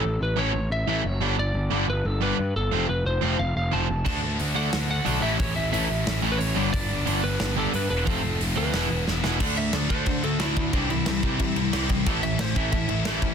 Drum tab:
CC |--------|--------|--------|x-------|
HH |--------|--------|--------|--o-o-o-|
SD |--------|--------|--------|----o---|
BD |--------|--------|--------|o-------|

CC |--------|--------|--------|xxxxxxxx|
HH |o-o-o-o-|o-o-o-o-|o-o-o---|--------|
SD |----o---|----o---|----o-oo|--o---o-|
BD |o-------|o-------|o-------|o--oo--o|

CC |xxxxxxxx|xxxxxxxx|
HH |--------|--------|
SD |--o---o-|--o---o-|
BD |o--oo--o|o--oo--o|